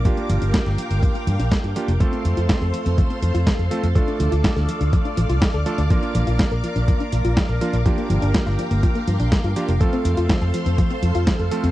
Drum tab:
HH |xxxxxxxxxxxxxxxx|xxxxxxxxxxxxxxxx|xxxxxxxxxxxxxxxx|xxxxxxxxxxxxxxxx|
SD |----oo------o---|----o-------o---|----oo------o---|----o-------o---|
BD |o---o---o---o---|o---o---o---o---|o---o---o---o---|o---o---o---o---|

HH |xxxxxxxxxxxxxxxx|xxxxxxxxxxxxxxxx|
SD |----oo------o---|----o-------o---|
BD |o---o---o---o---|o---o---o---o---|